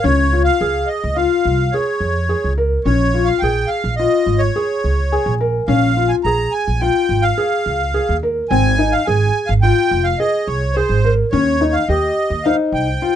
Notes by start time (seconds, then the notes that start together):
0.03 C#2 C#4 C#5
0.33 F4
0.44 F5
0.61 C#2 G#4
0.86 D#5
1.04 C#2
1.15 F4 F5
1.45 C2
1.72 G#4 C#5
2.00 F2
2.29 G#4
2.44 C#2
2.58 A#4
2.84 A#1 C#4 C#5
3.14 F4
3.25 F5
3.39 A#1 G5
3.43 G#4
3.68 F5
3.84 A#1
3.96 F4 D#5
4.26 G#1
4.38 C#5
4.56 G#4
4.84 C#2
5.12 G#4 G#5
5.26 A#1
5.40 A#4
5.67 A#1 C#4 F5
5.97 F4
6.09 G#5
6.24 A#1 G#4 A#5
6.52 G#5
6.68 A#1
6.80 F4 G5
7.09 G#1
7.22 F5
7.38 G#4
7.66 C#2
7.94 G#4
8.09 D#2
8.23 A#4
8.50 G#1 C4 G#5
8.78 D#4
8.92 F5
9.05 G#1 G#4 G#5
9.47 G#1 F5
9.62 F4 G5
9.91 F1
10.04 F5
10.18 G#4 D#5
10.47 C2 C#5
10.74 G#4 C5
10.89 G#1
11.05 A#4
11.31 D#2 C#4 C#5
11.61 D#4
11.73 F5
11.88 D#2 G4 D#5
12.30 D#2
12.43 D#4 C5 F5
12.72 C2 G5
13.02 F4